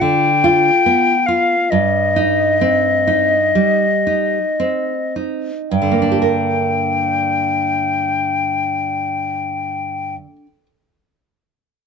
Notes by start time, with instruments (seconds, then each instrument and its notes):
Already playing: nylon-string guitar F4
0.01 nylon-string guitar D3, flute G5
0.44 nylon-string guitar F4
0.86 nylon-string guitar B3
1.26 nylon-string guitar F4, flute F5
1.71 nylon-string guitar G2, flute D#5
2.16 nylon-string guitar D#4
2.61 nylon-string guitar C4
3.07 nylon-string guitar D#4
3.55 nylon-string guitar G3
4.07 nylon-string guitar D#4
4.60 nylon-string guitar C4
5.16 nylon-string guitar D#4
5.71 nylon-string guitar G2, flute G5
5.82 nylon-string guitar D3
5.92 nylon-string guitar A#3
6.02 nylon-string guitar D4
6.12 nylon-string guitar G4
6.22 nylon-string guitar A#4